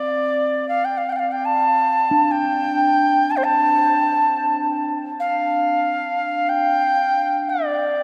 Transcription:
0, 0, Header, 1, 3, 480
1, 0, Start_track
1, 0, Key_signature, -1, "minor"
1, 0, Tempo, 500000
1, 7711, End_track
2, 0, Start_track
2, 0, Title_t, "Native American-style wooden flute"
2, 0, Program_c, 0, 77
2, 0, Note_on_c, 0, 74, 78
2, 653, Note_off_c, 0, 74, 0
2, 659, Note_on_c, 0, 77, 81
2, 813, Note_on_c, 0, 79, 79
2, 828, Note_off_c, 0, 77, 0
2, 936, Note_on_c, 0, 77, 72
2, 950, Note_off_c, 0, 79, 0
2, 1050, Note_on_c, 0, 79, 74
2, 1064, Note_off_c, 0, 77, 0
2, 1073, Note_on_c, 0, 77, 60
2, 1087, Note_off_c, 0, 79, 0
2, 1115, Note_on_c, 0, 79, 72
2, 1130, Note_off_c, 0, 77, 0
2, 1139, Note_on_c, 0, 77, 67
2, 1153, Note_off_c, 0, 79, 0
2, 1264, Note_on_c, 0, 79, 78
2, 1278, Note_off_c, 0, 77, 0
2, 1395, Note_on_c, 0, 81, 82
2, 1409, Note_off_c, 0, 79, 0
2, 2222, Note_on_c, 0, 79, 94
2, 2237, Note_off_c, 0, 81, 0
2, 3174, Note_on_c, 0, 81, 88
2, 3189, Note_off_c, 0, 79, 0
2, 3233, Note_on_c, 0, 72, 72
2, 3247, Note_off_c, 0, 81, 0
2, 3301, Note_on_c, 0, 81, 91
2, 3316, Note_off_c, 0, 72, 0
2, 4723, Note_off_c, 0, 81, 0
2, 4990, Note_on_c, 0, 77, 81
2, 6231, Note_on_c, 0, 79, 102
2, 6245, Note_off_c, 0, 77, 0
2, 7193, Note_on_c, 0, 74, 68
2, 7208, Note_off_c, 0, 79, 0
2, 7711, Note_off_c, 0, 74, 0
2, 7711, End_track
3, 0, Start_track
3, 0, Title_t, "Singing bowl"
3, 0, Program_c, 1, 14
3, 0, Note_on_c, 1, 60, 68
3, 2028, Note_on_c, 1, 62, 67
3, 5013, Note_off_c, 1, 60, 0
3, 7711, Note_off_c, 1, 62, 0
3, 7711, End_track
0, 0, End_of_file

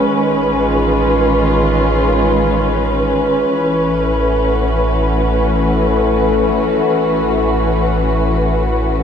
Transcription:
0, 0, Header, 1, 3, 480
1, 0, Start_track
1, 0, Tempo, 500000
1, 8669, End_track
2, 0, Start_track
2, 0, Title_t, "String section"
2, 0, Program_c, 0, 48
2, 0, Note_on_c, 0, 52, 56
2, 0, Note_on_c, 0, 56, 58
2, 0, Note_on_c, 0, 61, 75
2, 0, Note_on_c, 0, 66, 64
2, 0, Note_on_c, 0, 71, 69
2, 97, Note_on_c, 0, 51, 66
2, 101, Note_off_c, 0, 52, 0
2, 105, Note_off_c, 0, 66, 0
2, 440, Note_on_c, 0, 65, 64
2, 3333, Note_off_c, 0, 65, 0
2, 3340, Note_on_c, 0, 52, 73
2, 3343, Note_off_c, 0, 51, 0
2, 3348, Note_off_c, 0, 56, 0
2, 3500, Note_on_c, 0, 57, 58
2, 4041, Note_on_c, 0, 66, 52
2, 8669, Note_off_c, 0, 52, 0
2, 8669, Note_off_c, 0, 57, 0
2, 8669, Note_off_c, 0, 61, 0
2, 8669, Note_off_c, 0, 66, 0
2, 8669, Note_off_c, 0, 71, 0
2, 8669, End_track
3, 0, Start_track
3, 0, Title_t, "Sub bass"
3, 0, Program_c, 1, 38
3, 100, Note_on_c, 1, 33, 84
3, 3303, Note_off_c, 1, 33, 0
3, 3335, Note_on_c, 1, 33, 87
3, 6543, Note_off_c, 1, 33, 0
3, 6586, Note_on_c, 1, 33, 88
3, 8669, Note_off_c, 1, 33, 0
3, 8669, End_track
0, 0, End_of_file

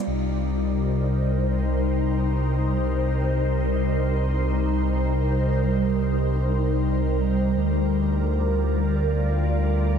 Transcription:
0, 0, Header, 1, 3, 480
1, 0, Start_track
1, 0, Key_signature, -3, "minor"
1, 0, Tempo, 500000
1, 9588, End_track
2, 0, Start_track
2, 0, Title_t, "Ambient pad"
2, 0, Program_c, 0, 92
2, 67, Note_on_c, 0, 72, 82
2, 69, Note_on_c, 0, 55, 74
2, 69, Note_on_c, 0, 63, 69
2, 72, Note_on_c, 0, 70, 69
2, 7228, Note_off_c, 0, 72, 0
2, 7229, Note_off_c, 0, 63, 0
2, 7265, Note_on_c, 0, 65, 72
2, 7267, Note_on_c, 0, 74, 82
2, 9588, Note_off_c, 0, 55, 0
2, 9588, Note_off_c, 0, 65, 0
2, 9588, Note_off_c, 0, 70, 0
2, 9588, Note_off_c, 0, 74, 0
2, 9588, End_track
3, 0, Start_track
3, 0, Title_t, "Detuned saw bass"
3, 0, Program_c, 1, 39
3, 64, Note_on_c, 1, 36, 78
3, 7249, Note_off_c, 1, 36, 0
3, 7262, Note_on_c, 1, 38, 79
3, 9588, Note_off_c, 1, 38, 0
3, 9588, End_track
0, 0, End_of_file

